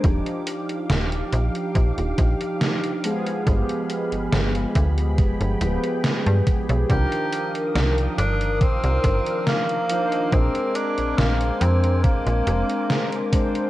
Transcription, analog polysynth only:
\new Staff \with { instrumentName = "Analog polysynth" } { \time 4/4 \key c \minor \tempo 4 = 70 <f d' ees' g'>2.~ <f d' ees' g'>8 <f aes b aes'>8 | <f aes b g'>2~ <f aes b g'>8 <f aes b b'>4. | <ees f d' bes'>2.~ <ees f d' bes'>8 <f d' ees' c''>8 | <aes c' d' bes'>2.~ <aes c' d' bes'>8 <aes c' d' c''>8 | }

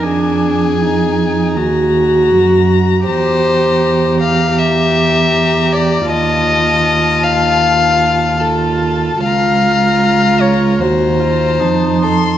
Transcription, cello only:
\new Staff \with { instrumentName = "Cello" } { \clef bass \time 4/4 \key f \phrygian \tempo 4 = 78 f,2 ees,4 ges,4 | e,1 | ees,1 | des,2 ees,4 f,4 | }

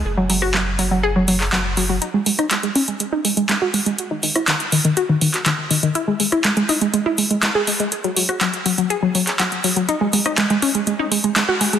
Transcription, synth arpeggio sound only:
\new Staff \with { instrumentName = "Synth arpeggio sound" } { \clef bass \time 4/4 \key fis \mixolydian \tempo 4 = 122 r16 fis16 fis16 fis'16 fis16 r16 fis16 fis16 gis'16 fis16 fis16 r16 fis16 r16 fis16 fis16 | dis'16 gis16 gis16 dis'16 gis16 gis16 cis'16 gis16 gis16 dis'16 gis16 gis16 gis16 fis'16 gis16 gis16 | r16 dis16 dis16 e'16 dis16 r16 dis16 dis16 fis'16 dis16 dis16 r16 dis16 r16 dis16 dis16 | e'16 gis16 gis16 e'16 gis16 gis16 dis'16 gis16 gis16 e'16 gis16 gis16 gis16 gis'16 gis16 gis16 |
r16 fis16 fis16 fis'16 fis16 r16 fis16 fis16 gis'16 fis16 fis16 r16 fis16 r16 fis16 fis16 | dis'16 gis16 gis16 dis'16 gis16 gis16 cis'16 gis16 gis16 dis'16 gis16 gis16 gis16 fis'16 gis16 gis16 | }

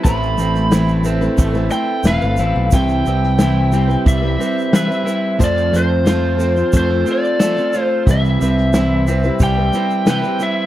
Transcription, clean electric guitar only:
\new Staff \with { instrumentName = "Clean electric guitar" } { \time 4/4 \key c \major \tempo 4 = 90 a,8 c'8 e'8 c'8 a8 c'8 b'8 e'8 | c8 c'8 e'8 c'8 g8 c'8 b'8 e'8 | f8 c'8 f'8 c'8 a8 c'8 a'8 f'8 | c8 c'8 e'8 c'8 g8 c'8 b'8 e'8 | }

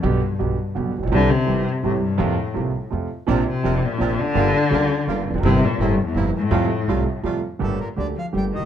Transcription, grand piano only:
\new Staff \with { instrumentName = "Grand piano" } { \clef bass \time 3/4 \key f \mixolydian \tempo 4 = 166 <b,, b, d g b g'>8 r8 <b,, b, d g b g'>8 r8 <b,, b, d g b g'>8 r32 a,,32 bes,,32 b,,32 | <c, c e g c' g'>8 r8 <g,, g, e g c' g'>8 r8 <c, c e g c' g'>8 r8 | <f, c f bes f'>8 r8 <c, c f bes f'>8 r8 <f, c f a f'>8 r8 | <bes,, bes, c f bes d'>8 r8 <f,, f, c f bes d'>8 r8 <bes,, bes, c f bes d'>8 r8 |
<g,, g, d g bes f'>8 r8 <d, d g bes f'>8 r8 <g,, g, d g bes f'>8 r32 e,32 f,32 ges,32 | <g,, g, c g bes e'>8 r8 <g,, g, c g bes e'>8 r8 <g,, g, c g bes e'>8 r8 | <f, c f g a f'>8 r8 <c, c g a f'>8 r8 <f, c f g a f'>8 r8 | \key g \minor <g,, g, d a bes g'>8 r8 <d, d a bes g'>8 r8 <g,, g, d a bes g'>8 r32 c,32 cis,32 r32 | }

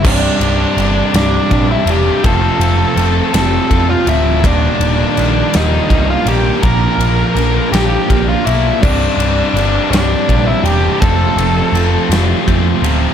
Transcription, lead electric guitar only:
\new Staff \with { instrumentName = "Lead electric guitar" } { \time 6/8 \key f \major \tempo 4. = 55 <d' d''>4. <d' d''>8. <e' e''>16 <g' g''>8 | <a' a''>4. <a' a''>8. <f' f''>16 <e' e''>8 | <d' d''>4. <ees' ees''>8. <f' f''>16 <g' g''>8 | <bes' bes''>4. <g' g''>8. <f' f''>16 <e' e''>8 |
<d' d''>4. <d' d''>8. <e' e''>16 <g' g''>8 | <a' a''>4. r4. | }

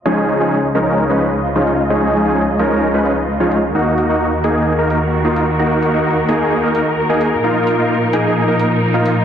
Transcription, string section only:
\new Staff \with { instrumentName = "String section" } { \clef bass \time 4/4 \key des \mixolydian \tempo 4 = 130 << { ees''1~ | ees''1 | bes'1~ | bes'1~ |
bes'1 | } \\ { <des, des f'>1~ | <des, des f'>1 | <ees, ees ges'>1~ | <ees, ees ges'>1 |
<bes, f ees'>1 | } >> }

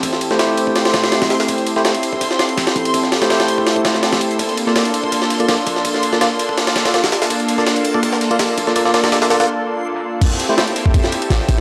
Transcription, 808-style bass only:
\new Staff \with { instrumentName = "808-style bass" } { \clef bass \time 4/4 \key a \phrygian \tempo 4 = 165 a,,4. r4 e,,8. a,,16 r8 | r2. a,,16 r16 a,,8~ | a,,4. r4 e,,8. a,,16 r8 | r2. bes,,16 r16 bes,,8~ |
bes,,4. r4 f,,8. bes,,16 r8 | r2. bes,,16 r16 bes,,8~ | bes,,4. r2 r8 | r2. a,,16 r16 a,,8 | }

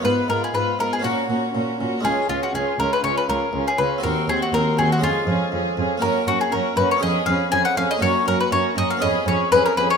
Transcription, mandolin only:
\new Staff \with { instrumentName = "Mandolin" } { \time 4/4 \key fis \major \tempo 4 = 120 ces''8 ais'16 aes'16 ces''8 ais'16 aes'16 fis'2 | gis'8 eis'16 fis'16 gis'8 ais'16 b'16 cis''16 b'16 ais'8. gis'16 b'8 | ais'8 gis'16 ges'16 ais'8 gis'16 ges'16 eis'2 | ais'8 fis'16 gis'16 ais'8 b'16 cis''16 dis''8 eis''8 gis''16 fis''16 eis''16 dis''16 |
cis''8 ais'16 b'16 cis''8 dis''16 eis''16 dis''8 cis''8 b'16 ais'16 b'16 cis''16 | }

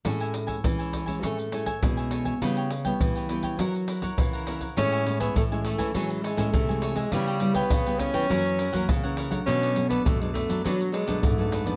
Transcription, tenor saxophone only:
\new Staff \with { instrumentName = "Tenor saxophone" } { \time 4/4 \key a \major \tempo 4 = 102 r1 | r1 | cis'8. b16 a16 gis16 a8 fis8 gis8 a8. gis16 | g8. b8. cis'2 r8 |
cis'8. b16 a16 gis16 a8 fis8 gis8 a8. b16 | }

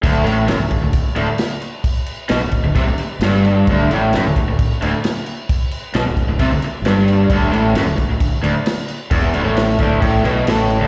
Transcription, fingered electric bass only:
\new Staff \with { instrumentName = "Fingered electric bass" } { \clef bass \time 4/4 \key d \mixolydian \tempo 4 = 132 d,,8 a,,8 fis,,16 d,,16 d,,16 d,,8 r16 d,,16 r4 r16 | r4 b,,16 d,,8 d,,16 c,16 d,,16 r8 g,,4 | d,,8 a,,8 fis,,16 d,,16 d,,16 d,,8 r16 d,,16 r4 r16 | r4 b,,16 d,,8 d,,16 c,16 d,,16 r8 g,,4 |
d,,8 a,,8 fis,,16 d,,16 d,,16 d,,8 r16 d,,16 r4 r16 | e,,8 d,,16 a,,8. d,,8 a,,8 b,,8 a,,8. d,,16 | }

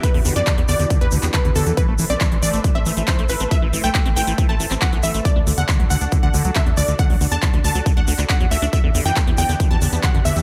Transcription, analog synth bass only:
\new Staff \with { instrumentName = "Analog synth bass" } { \clef bass \time 4/4 \key e \minor \tempo 4 = 138 r16 e,16 e,16 fis,16 r16 e,16 e,16 e,16 r16 e,16 d,16 e,16 r16 e,16 e,16 e,16 | r16 a,,16 a,,16 b,,16 r16 a,,16 a,,16 a,,16 r16 a,,16 a,,16 a,,16 r16 b,,16 a,,16 a,,16 | r16 a,,16 a,,16 b,,16 r16 a,,16 a,,16 a,,16 r16 a,,16 a,,16 a,,16 r16 b,,16 a,,16 a,,16 | r16 d,16 d,16 e,16 r16 d,16 d,16 d,16 r16 d,16 d,16 d,16 r16 e,16 d,16 d,16 |
r16 d,16 d,16 e,16 r16 d,16 d,16 d,16 r16 d,16 d,16 d,16 r16 e,16 d,16 d,16 | r16 e,16 e,16 fis,16 r16 e,16 e,16 e,16 r16 e,16 e,16 e,16 r16 fis,16 e,16 e,16 | }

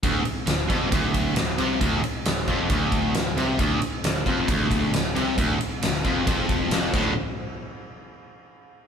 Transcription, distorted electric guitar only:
\new Staff \with { instrumentName = "Distorted electric guitar" } { \clef bass \time 4/4 \key d \minor \tempo 4 = 135 d,8 r8 d,8 f,8 d,4 d,8 c8 | d,8 r8 d,8 f,8 d,4 d,8 c8 | d,8 r8 d,8 f,8 d,4 d,8 c8 | d,8 r8 d,8 f,8 f,4. <d, a, d>8 |
r1 | }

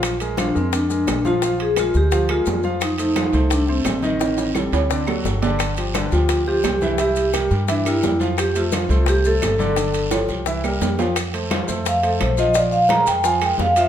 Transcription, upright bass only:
\new Staff \with { instrumentName = "Upright bass" } { \clef bass \time 4/4 \key bes \major \tempo 4 = 172 bes,,4. f,4. bes,,4~ | bes,,4. d,4. f,4~ | f,4. c,4. a,,4~ | a,,4. d,4. g,,4~ |
g,,4. d,4. c,4~ | c,4. g,4. f,4~ | f,4. c,4. g,,4~ | g,,4. c,4. f,4~ |
f,4. f,4. bes,,4~ | bes,,4. f,4. f,4 | }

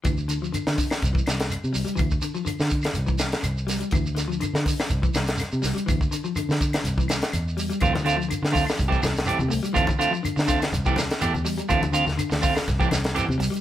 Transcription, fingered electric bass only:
\new Staff \with { instrumentName = "Fingered electric bass" } { \clef bass \time 4/4 \key c \mixolydian \tempo 4 = 123 d,4~ d,16 d8 r16 c,8 c,8. c16 c,16 r16 | d,8 r8. d8. c,4 c,4 | d,4~ d,16 d8 r16 c,8 c,8. c16 c,16 r16 | d,8 r8. d8. c,4 e,4 |
d,4~ d,16 d8 r16 c,8 c,8. c16 c,16 r16 | d,8 r8. d8. c,4 e,4 | d,4~ d,16 d,8 r16 c,8 c,8. c16 c,16 r16 | }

